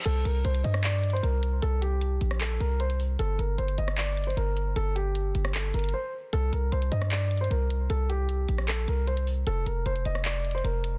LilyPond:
<<
  \new Staff \with { instrumentName = "Grand piano" } { \time 4/4 \key c \dorian \tempo 4 = 153 a'8 bes'8 c''8 ees''8 d''8. c''16 bes'4 | a'8 g'4. a'8 bes'8 c''8 r8 | a'8 bes'8 c''8 ees''8 d''8. c''16 bes'4 | a'8 g'4. a'8 bes'8 c''8 r8 |
a'8 bes'8 c''8 ees''8 d''8. c''16 bes'4 | a'8 g'4. a'8 bes'8 c''8 r8 | a'8 bes'8 c''8 ees''8 d''8. c''16 bes'4 | }
  \new Staff \with { instrumentName = "808-style bass" } { \clef bass \time 4/4 \key c \dorian c,8 c,8 c,8 g,4. c,4 | c,4. bes,,4 c,4. | g,,8 g,,8 g,,8 g,,4. g,,4 | g,,4. g,,4 g,,8 r4 |
c,8 c,8 c,8 g,4. c,4 | c,4. bes,,4 c,4. | f,,8 f,,8 f,,8 f,,4. f,,4 | }
  \new DrumStaff \with { instrumentName = "Drums" } \drummode { \time 4/4 <cymc hh>8 hh8 hh16 hh16 hh16 <hh ss>16 \tuplet 3/2 { <hc hh>16 r16 r16 hh16 hh16 hh16 } hh8 hh8 | hh8 hh8 hh8 hh16 ss16 <hc hh>8 hh8 hh16 hh16 hho8 | hh8 hh8 hh16 hh16 hh16 <hh ss>16 \tuplet 3/2 { <hc hh>16 r16 r16 hh16 hh16 hh16 } hh8 hh8 | hh8 hh8 hh8 hh16 ss16 <hc hh>8 hh32 hh32 hh32 hh32 r4 |
hh8 hh8 hh16 hh16 hh16 <hh ss>16 \tuplet 3/2 { <hc hh>16 r16 r16 hh16 hh16 hh16 } hh8 hh8 | hh8 hh8 hh8 hh16 ss16 <hc hh>8 hh8 hh16 hh16 hho8 | hh8 hh8 hh16 hh16 hh16 <hh ss>16 \tuplet 3/2 { <hc hh>16 r16 r16 hh16 hh16 hh16 } hh8 hh8 | }
>>